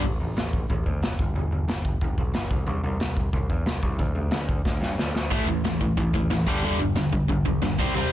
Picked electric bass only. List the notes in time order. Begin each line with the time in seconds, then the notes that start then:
0.04 A1
0.20 A1
0.37 A1
0.70 A1
0.86 D2
1.01 F#1
1.19 G1
1.34 G1
1.51 G1
1.68 G1
2.01 G1
2.18 B1
2.34 G1
2.51 C2
2.67 C2
2.83 C2
3.00 C2
3.33 C2
3.50 E2
3.66 C2
3.83 C2
3.99 D2
4.15 D2
4.32 D2
4.65 D2
4.81 G2
4.98 D2
5.14 D2
5.31 A1
5.47 A1
5.64 A1
5.97 A1
6.13 D2
6.30 A1
6.47 G1
6.63 G1
6.79 G1
6.96 G1
7.29 G1
7.46 B1
7.62 G1
7.78 C2
7.95 C2